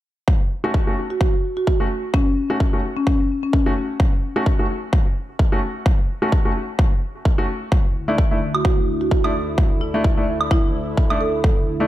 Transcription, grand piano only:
0.64 0.70 A3 medium
0.64 0.70 C#4 medium
0.64 0.70 F#4 medium
0.87 0.93 A3 medium
0.87 0.93 C#4 medium
0.87 0.93 F#4 medium
1.80 1.86 A3 medium
1.80 1.86 C#4 medium
1.80 1.86 F#4 medium
2.50 2.56 A3 medium
2.50 2.56 C#4 medium
2.50 2.56 F#4 medium
2.73 2.79 A3 medium
2.73 2.79 C#4 medium
2.73 2.79 F#4 medium
3.66 3.72 A3 medium
3.66 3.72 C#4 medium
3.66 3.72 F#4 medium
4.36 4.42 A3 medium
4.36 4.42 C#4 medium
4.36 4.42 F#4 medium
4.59 4.65 A3 medium
4.59 4.65 C#4 medium
4.59 4.65 F#4 medium
5.52 5.58 A3 medium
5.52 5.58 C#4 medium
5.52 5.58 F#4 medium
6.22 6.28 A3 medium
6.22 6.28 C#4 medium
6.22 6.28 F#4 medium
6.45 6.51 A3 medium
6.45 6.51 C#4 medium
6.45 6.51 F#4 medium
7.38 7.44 A3 medium
7.38 7.44 C#4 medium
7.38 7.44 F#4 medium
8.08 8.14 A3 medium
8.08 8.14 D4 medium
8.08 8.14 E4 medium
8.31 8.37 A3 medium
8.31 8.37 D4 medium
8.31 8.37 E4 medium
9.24 9.30 A3 medium
9.24 9.30 D4 medium
9.24 9.30 E4 medium
9.94 10.00 A3 medium
9.94 10.00 D4 medium
9.94 10.00 E4 medium
10.17 10.23 A3 medium
10.17 10.23 D4 medium
10.17 10.23 E4 medium
11.10 11.16 A3 medium
11.10 11.16 D4 medium
11.10 11.16 E4 medium
11.80 11.86 A3 medium
11.80 11.86 D4 medium
11.80 11.86 E4 medium

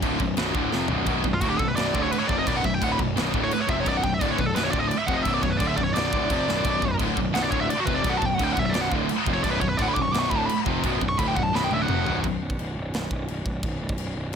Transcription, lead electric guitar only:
1.34 1.41 F4 medium
1.41 1.49 F#4 medium
1.50 1.59 G4 medium
1.59 1.68 A4 medium
1.68 1.76 B4 medium
1.76 2.01 D5 medium
2.03 2.11 C#5 medium
2.11 2.19 B4 medium
2.19 2.27 C#5 medium
2.28 2.37 D5 loud
2.39 2.47 D#5 medium
2.48 2.56 D5 medium
2.57 2.64 F#5 medium
2.65 2.74 E5 loud
2.74 2.82 G5 medium
2.84 2.91 F#5 medium
2.92 2.96 B5 loud
3.44 3.52 C#5 medium
3.53 3.61 B4 medium
3.60 3.69 C#5 medium
3.70 3.80 E5 loud
3.80 3.87 C#5 medium
3.88 3.96 D5 medium
3.97 4.03 F#5 medium
4.04 4.12 G5 loud
4.14 4.22 E5 medium
4.22 4.30 D5 medium
4.32 4.39 C#5 medium
4.37 4.46 B4 medium
4.46 4.55 A4 medium
4.56 4.64 B4 medium
4.63 4.71 C#5 loud
4.71 4.79 D5 loud
4.79 4.88 D#5 loud
4.88 4.98 D5 loud
4.98 5.07 E5 medium
5.07 5.16 F#5 loud
5.13 5.22 D#5 medium
5.22 5.34 E5 loud
5.34 5.42 D5 medium
5.43 5.51 C#5 medium
5.50 5.59 B4 medium
5.57 5.67 D5 medium
5.68 5.76 E5 medium
5.77 5.84 D5 loud
5.84 5.94 C#5 medium
5.94 6.95 D5 medium
7.34 7.43 F#5 medium
7.42 7.50 D5 medium
7.51 7.60 C#5 loud
7.61 7.69 E5 loud
7.70 7.78 D5 medium
7.80 7.88 F#4 medium
7.86 7.95 B4 loud
7.94 8.01 D5 medium
8.03 8.12 D5 loud
8.09 8.17 F#5 loud
8.18 8.25 A5 loud
8.25 8.36 G5 loud
8.36 8.43 F#5 medium
8.43 8.53 G5 loud
8.53 8.59 F#5 loud
8.59 8.65 E5 medium
8.66 8.80 D5 medium
8.66 8.73 E5 medium
8.81 8.87 F#5 medium
9.34 9.43 C#5 medium
9.43 9.50 D5 loud
9.51 9.60 B4 medium
9.60 9.69 C#5 loud
9.69 9.77 B4 medium
9.77 9.84 D5 medium
9.82 9.89 F#5 medium
9.88 9.94 B5 medium
9.94 10.02 D6 loud
10.02 10.13 C#6 medium
10.13 10.19 D6 loud
10.19 10.29 C#6 loud
10.30 10.38 B5 loud
10.38 10.46 A5 loud
10.46 10.57 B5 loud
11.09 11.18 C#6 loud
11.19 11.27 B5 medium
11.28 11.36 G5 medium
11.36 11.43 F#5 loud
11.43 11.52 A5 medium
11.55 11.63 B5 medium
11.64 11.71 G5 medium
11.74 11.81 E5 loud
11.81 12.15 F#5 medium

